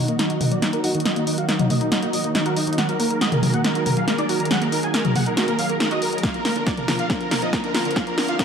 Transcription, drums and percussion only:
0.08 closed hi-hat
0.19 snare, closed hi-hat
0.30 closed hi-hat
0.41 open hi-hat, mid tom
0.52 closed hi-hat
0.62 snare, closed hi-hat
0.73 closed hi-hat
0.84 open hi-hat
0.95 closed hi-hat
1.00 closed hi-hat
1.05 snare, closed hi-hat
1.16 closed hi-hat
1.27 open hi-hat
1.38 closed hi-hat
1.49 snare, closed hi-hat
1.59 closed hi-hat, mid tom
1.70 open hi-hat, mid tom
1.81 closed hi-hat
1.92 snare, closed hi-hat
2.03 closed hi-hat
2.13 open hi-hat
2.24 closed hi-hat
2.35 snare, closed hi-hat
2.46 closed hi-hat
2.57 open hi-hat
2.67 closed hi-hat
2.73 closed hi-hat
2.78 snare, closed hi-hat
2.89 closed hi-hat
3.00 open hi-hat
3.10 closed hi-hat
3.21 snare, closed hi-hat
3.32 closed hi-hat, mid tom
3.43 open hi-hat, mid tom
3.54 closed hi-hat
3.64 snare, closed hi-hat
3.75 closed hi-hat
3.86 open hi-hat, mid tom
3.97 closed hi-hat
4.08 snare, closed hi-hat
4.18 closed hi-hat
4.29 open hi-hat
4.40 closed hi-hat
4.45 closed hi-hat
4.51 snare, closed hi-hat
4.62 closed hi-hat
4.72 open hi-hat
4.83 closed hi-hat
4.94 snare, closed hi-hat
5.05 closed hi-hat, mid tom
5.16 open hi-hat, mid tom
5.26 closed hi-hat
5.37 snare, closed hi-hat
5.48 closed hi-hat
5.59 open hi-hat
5.69 closed hi-hat
5.80 snare, closed hi-hat
5.91 closed hi-hat
6.02 open hi-hat
6.13 closed hi-hat
6.18 closed hi-hat
6.23 kick, snare, closed hi-hat
6.34 closed hi-hat
6.45 snare, open hi-hat
6.56 closed hi-hat
6.67 kick, snare, closed hi-hat
6.77 closed hi-hat, mid tom
6.88 snare, open hi-hat, mid tom
6.99 closed hi-hat
7.10 kick, snare, closed hi-hat
7.21 closed hi-hat
7.31 snare, open hi-hat, mid tom
7.42 closed hi-hat
7.53 kick, snare, closed hi-hat
7.64 closed hi-hat
7.75 snare, open hi-hat
7.85 closed hi-hat
7.91 closed hi-hat
7.96 kick, snare, closed hi-hat
8.07 closed hi-hat
8.18 snare, open hi-hat
8.28 closed hi-hat
8.39 kick, snare, closed hi-hat

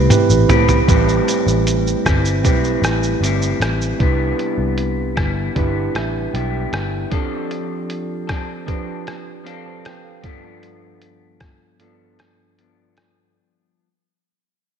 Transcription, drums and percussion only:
0.10 closed hi-hat, mid tom, shaker
0.30 shaker
0.49 closed hi-hat, floor tom, shaker
0.68 floor tom, shaker
0.88 kick, closed hi-hat, shaker
1.09 shaker
1.28 closed hi-hat, shaker
1.48 shaker
1.67 closed hi-hat, shaker
1.87 shaker
2.06 kick, cross-stick, closed hi-hat, shaker
2.25 shaker
2.45 kick, closed hi-hat, shaker
2.64 shaker
2.84 cross-stick, closed hi-hat, shaker
3.03 shaker
3.24 closed hi-hat, shaker
3.42 shaker
3.62 cross-stick, closed hi-hat, shaker
3.81 shaker
4.00 kick, closed hi-hat
4.39 closed hi-hat
4.78 closed hi-hat
5.17 kick, cross-stick, closed hi-hat
5.56 kick, closed hi-hat
5.95 cross-stick, closed hi-hat
6.35 closed hi-hat
6.73 cross-stick, closed hi-hat
7.12 kick, closed hi-hat
7.51 closed hi-hat
7.90 closed hi-hat
8.29 kick, cross-stick, closed hi-hat
8.68 kick, closed hi-hat
9.07 cross-stick, closed hi-hat
9.47 closed hi-hat
9.85 cross-stick, closed hi-hat
10.24 kick, closed hi-hat
10.63 closed hi-hat
11.02 closed hi-hat
11.40 kick, cross-stick, closed hi-hat
11.80 closed hi-hat
12.19 cross-stick, closed hi-hat
12.59 closed hi-hat
12.97 cross-stick, closed hi-hat

